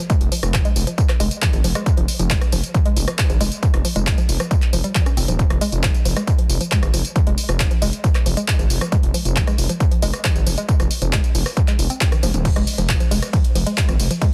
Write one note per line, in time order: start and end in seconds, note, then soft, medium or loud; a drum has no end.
0.10 0.16 G#3 loud
0.10 kick loud
0.10 closed hi-hat medium
0.10 tambourine soft
0.21 0.29 F1 loud
0.21 closed hi-hat medium
0.32 0.41 F3 medium
0.32 open hi-hat loud
0.32 tambourine medium
0.43 0.60 F1 medium
0.43 cross-stick medium
0.43 closed hi-hat medium
0.43 tambourine soft
0.54 0.63 F3 medium
0.54 kick loud
0.54 clap loud
0.54 closed hi-hat medium
0.54 tambourine soft
0.65 0.71 G#3 loud
0.65 closed hi-hat medium
0.65 tambourine soft
0.76 0.84 F1 medium
0.76 open hi-hat loud
0.76 tambourine medium
0.87 0.96 F3 medium
0.87 closed hi-hat medium
0.87 tambourine soft
0.98 kick loud
0.98 closed hi-hat medium
0.98 tambourine soft
1.09 1.18 F3 medium
1.09 cross-stick medium
1.09 clap soft
1.09 closed hi-hat medium
1.20 1.28 F1 medium
1.20 1.26 G#3 loud
1.20 open hi-hat loud
1.20 tambourine medium
1.31 closed hi-hat medium
1.31 tambourine soft
1.42 1.51 F3 medium
1.42 kick loud
1.42 clap loud
1.42 closed hi-hat medium
1.42 tambourine soft
1.53 1.62 G#1 loud
1.53 closed hi-hat medium
1.53 tambourine soft
1.64 1.73 F1 medium
1.64 1.73 F3 medium
1.64 open hi-hat loud
1.64 tambourine medium
1.75 1.81 G#3 loud
1.75 cross-stick loud
1.75 closed hi-hat medium
1.75 tambourine soft
1.86 kick loud
1.86 closed hi-hat medium
1.86 tambourine soft
1.97 2.06 F1 loud
1.97 2.06 F3 medium
1.97 closed hi-hat medium
2.08 open hi-hat loud
2.08 tambourine medium
2.19 2.36 F1 medium
2.19 2.29 F3 medium
2.19 closed hi-hat medium
2.19 tambourine soft
2.30 2.37 G#3 loud
2.30 kick loud
2.30 clap loud
2.30 closed hi-hat medium
2.30 tambourine soft
2.41 cross-stick loud
2.41 closed hi-hat medium
2.41 tambourine soft
2.52 2.61 F1 medium
2.52 2.62 F3 medium
2.52 open hi-hat loud
2.52 tambourine medium
2.64 closed hi-hat medium
2.64 tambourine soft
2.74 2.84 F3 medium
2.74 kick loud
2.74 closed hi-hat medium
2.74 tambourine soft
2.86 2.92 G#3 loud
2.86 closed hi-hat medium
2.97 3.05 F1 medium
2.97 open hi-hat loud
2.97 tambourine medium
3.08 3.17 F3 medium
3.08 cross-stick loud
3.08 closed hi-hat medium
3.08 tambourine soft
3.19 kick loud
3.19 clap loud
3.19 closed hi-hat medium
3.19 tambourine soft
3.30 3.38 G#1 loud
3.30 3.39 F3 medium
3.30 closed hi-hat medium
3.30 tambourine soft
3.41 3.49 F1 medium
3.41 3.47 G#3 loud
3.41 open hi-hat loud
3.41 tambourine medium
3.52 closed hi-hat medium
3.52 tambourine soft
3.63 3.72 F3 medium
3.63 kick loud
3.63 closed hi-hat medium
3.63 tambourine soft
3.74 3.82 F1 loud
3.74 cross-stick loud
3.74 closed hi-hat medium
3.85 3.94 F3 medium
3.85 open hi-hat loud
3.85 tambourine medium
3.96 4.13 F1 medium
3.96 4.02 G#3 loud
3.96 closed hi-hat medium
3.96 tambourine soft
4.07 kick loud
4.07 clap loud
4.07 closed hi-hat medium
4.07 tambourine soft
4.18 4.27 F3 medium
4.18 closed hi-hat medium
4.18 tambourine soft
4.29 4.37 F1 medium
4.29 open hi-hat loud
4.29 tambourine medium
4.40 4.49 F3 medium
4.40 cross-stick loud
4.40 closed hi-hat medium
4.40 tambourine soft
4.51 4.57 G#3 loud
4.51 kick loud
4.51 closed hi-hat medium
4.51 tambourine soft
4.62 clap soft
4.62 closed hi-hat medium
4.73 4.81 F1 medium
4.73 4.79 F3 medium
4.73 open hi-hat loud
4.73 tambourine medium
4.84 4.88 G3 medium
4.84 closed hi-hat medium
4.84 tambourine soft
4.95 5.04 F3 medium
4.95 kick loud
4.95 clap loud
4.95 closed hi-hat medium
4.95 tambourine soft
5.06 5.12 C#4 medium
5.06 cross-stick medium
5.06 closed hi-hat medium
5.06 tambourine soft
5.17 5.26 F1 medium
5.17 5.21 C4 medium
5.17 open hi-hat loud
5.17 tambourine medium
5.28 5.45 D#1 medium
5.28 5.34 F3 medium
5.28 closed hi-hat medium
5.28 tambourine soft
5.39 kick loud
5.39 closed hi-hat medium
5.39 tambourine soft
5.50 5.59 F1 loud
5.50 5.59 F3 medium
5.50 cross-stick loud
5.50 closed hi-hat medium
5.61 5.67 G#3 loud
5.61 open hi-hat loud
5.61 tambourine medium
5.72 5.89 F1 medium
5.72 closed hi-hat medium
5.72 tambourine soft
5.83 5.92 F3 medium
5.83 kick loud
5.83 clap loud
5.83 closed hi-hat medium
5.83 tambourine soft
5.94 closed hi-hat medium
5.94 tambourine soft
6.05 6.14 F1 medium
6.05 6.15 F3 medium
6.05 open hi-hat loud
6.05 tambourine medium
6.16 6.23 G#3 loud
6.16 cross-stick loud
6.16 closed hi-hat medium
6.16 tambourine soft
6.27 kick loud
6.27 closed hi-hat medium
6.27 tambourine soft
6.39 6.48 F3 medium
6.39 closed hi-hat medium
6.50 6.58 F1 medium
6.50 open hi-hat loud
6.50 tambourine medium
6.61 6.70 F3 medium
6.61 closed hi-hat medium
6.61 tambourine soft
6.72 6.78 G#3 loud
6.72 kick loud
6.72 clap loud
6.72 closed hi-hat medium
6.72 tambourine soft
6.83 6.91 G#1 loud
6.83 cross-stick loud
6.83 closed hi-hat medium
6.83 tambourine soft
6.94 7.02 F1 medium
6.94 7.03 F3 medium
6.94 open hi-hat loud
6.94 tambourine medium
7.05 closed hi-hat medium
7.05 tambourine soft
7.16 7.25 F3 medium
7.16 kick loud
7.16 closed hi-hat medium
7.16 tambourine soft
7.27 7.35 F1 loud
7.27 7.33 G#3 loud
7.27 closed hi-hat medium
7.38 open hi-hat loud
7.38 tambourine medium
7.49 7.66 F1 medium
7.49 7.58 F3 medium
7.49 cross-stick medium
7.49 closed hi-hat medium
7.49 tambourine soft
7.60 kick loud
7.60 clap loud
7.60 closed hi-hat medium
7.60 tambourine soft
7.71 7.80 F3 medium
7.71 closed hi-hat medium
7.71 tambourine soft
7.82 7.90 F1 medium
7.82 7.88 G#3 loud
7.82 open hi-hat loud
7.82 tambourine medium
7.93 closed hi-hat medium
7.93 tambourine soft
8.04 8.13 F3 medium
8.04 kick loud
8.04 closed hi-hat medium
8.04 tambourine soft
8.15 cross-stick medium
8.15 clap soft
8.15 closed hi-hat medium
8.26 8.34 F1 medium
8.26 8.35 F3 medium
8.26 open hi-hat loud
8.26 tambourine medium
8.37 8.43 G#3 loud
8.37 closed hi-hat medium
8.37 tambourine soft
8.48 kick loud
8.48 clap loud
8.48 closed hi-hat medium
8.48 tambourine soft
8.59 8.67 G#1 loud
8.59 8.68 F3 medium
8.59 closed hi-hat medium
8.59 tambourine soft
8.70 8.79 F1 medium
8.70 open hi-hat loud
8.70 tambourine medium
8.81 8.90 F3 medium
8.81 cross-stick loud
8.81 closed hi-hat medium
8.81 tambourine soft
8.92 8.98 G#3 loud
8.92 kick loud
8.92 closed hi-hat medium
8.92 tambourine soft
9.03 9.12 F1 loud
9.03 closed hi-hat medium
9.14 9.23 F3 medium
9.14 open hi-hat loud
9.14 tambourine medium
9.25 9.42 F1 medium
9.25 closed hi-hat medium
9.25 tambourine soft
9.36 9.45 F3 medium
9.36 kick loud
9.36 clap loud
9.36 closed hi-hat medium
9.36 tambourine soft
9.47 9.53 G#3 loud
9.47 cross-stick medium
9.47 closed hi-hat medium
9.47 tambourine soft
9.58 9.67 F1 medium
9.58 open hi-hat loud
9.58 tambourine medium
9.69 9.79 F3 medium
9.69 closed hi-hat medium
9.69 tambourine soft
9.80 kick loud
9.80 closed hi-hat medium
9.80 tambourine soft
9.91 10.01 F3 medium
9.91 closed hi-hat medium
10.02 10.11 F1 medium
10.02 10.09 G#3 loud
10.02 open hi-hat loud
10.02 tambourine medium
10.13 cross-stick medium
10.13 closed hi-hat medium
10.13 tambourine soft
10.24 10.34 F3 medium
10.24 kick loud
10.24 clap loud
10.24 closed hi-hat medium
10.24 tambourine soft
10.36 10.44 G#1 loud
10.36 closed hi-hat medium
10.36 tambourine soft
10.47 10.55 F1 medium
10.47 10.56 F3 medium
10.47 open hi-hat loud
10.47 tambourine medium
10.58 10.64 G#3 loud
10.58 closed hi-hat medium
10.58 tambourine soft
10.69 kick loud
10.69 closed hi-hat medium
10.69 tambourine soft
10.80 10.88 F1 loud
10.80 10.89 F3 medium
10.80 cross-stick medium
10.80 closed hi-hat medium
10.80 tambourine soft
10.91 open hi-hat loud
10.91 tambourine medium
11.02 11.18 F1 medium
11.02 11.11 F3 medium
11.02 closed hi-hat medium
11.02 tambourine soft
11.13 11.19 G#3 loud
11.13 kick loud
11.13 clap loud
11.13 closed hi-hat medium
11.13 tambourine soft
11.24 closed hi-hat medium
11.24 tambourine soft
11.35 11.43 F1 medium
11.35 11.44 F3 medium
11.35 open hi-hat loud
11.35 tambourine medium
11.46 cross-stick medium
11.46 open hi-hat medium
11.46 tambourine soft
11.57 11.66 F3 medium
11.57 kick loud
11.57 closed hi-hat medium
11.57 tambourine soft
11.68 11.74 G#3 loud
11.68 clap soft
11.68 closed hi-hat medium
11.68 tambourine soft
11.79 11.87 F1 medium
11.79 open hi-hat loud
11.79 tambourine medium
11.90 11.94 C4 medium
11.90 closed hi-hat medium
11.90 tambourine soft
12.01 kick loud
12.01 clap loud
12.01 closed hi-hat medium
12.01 tambourine soft
12.12 12.16 D#3 medium
12.12 cross-stick medium
12.12 closed hi-hat medium
12.12 tambourine soft
12.23 12.31 F1 medium
12.23 12.32 F3 loud
12.23 open hi-hat loud
12.23 high tom medium
12.23 tambourine medium
12.34 12.51 D#1 medium
12.34 closed hi-hat medium
12.34 mid tom medium
12.34 tambourine soft
12.45 12.54 F3 medium
12.45 kick loud
12.45 closed hi-hat medium
12.45 ride medium
12.45 tambourine soft
12.45 crash medium
12.56 12.64 F1 loud
12.56 12.62 G#3 loud
12.56 cross-stick medium
12.56 closed hi-hat medium
12.56 ride medium
12.67 open hi-hat loud
12.67 ride medium
12.67 tambourine medium
12.78 12.95 F1 medium
12.78 12.87 F3 medium
12.78 closed hi-hat medium
12.78 ride medium
12.78 tambourine soft
12.89 kick loud
12.89 clap loud
12.89 closed hi-hat medium
12.89 ride medium
12.89 tambourine soft
13.00 13.09 F3 medium
13.00 closed hi-hat medium
13.00 ride medium
13.00 tambourine soft
13.11 13.20 F1 medium
13.11 13.17 G#3 loud
13.11 open hi-hat loud
13.11 ride medium
13.11 tambourine medium
13.22 cross-stick medium
13.22 closed hi-hat medium
13.22 ride medium
13.22 tambourine soft
13.33 13.42 F3 medium
13.33 kick loud
13.33 closed hi-hat medium
13.33 ride medium
13.33 tambourine soft
13.45 closed hi-hat medium
13.45 ride medium
13.55 13.64 F1 medium
13.55 13.65 F3 medium
13.55 open hi-hat loud
13.55 ride medium
13.55 tambourine medium
13.66 13.73 G#3 loud
13.66 closed hi-hat medium
13.66 ride medium
13.66 tambourine soft
13.77 kick loud
13.77 clap loud
13.77 closed hi-hat medium
13.77 ride medium
13.77 tambourine soft
13.88 13.97 G#1 loud
13.88 13.98 F3 medium
13.88 cross-stick medium
13.88 closed hi-hat medium
13.88 ride medium
13.88 tambourine soft
14.00 14.08 F1 medium
14.00 open hi-hat loud
14.00 ride medium
14.00 tambourine medium
14.11 14.20 F3 medium
14.11 closed hi-hat medium
14.11 ride medium
14.11 tambourine soft
14.22 14.28 G#3 loud
14.22 kick loud
14.22 closed hi-hat medium
14.22 ride medium
14.22 tambourine soft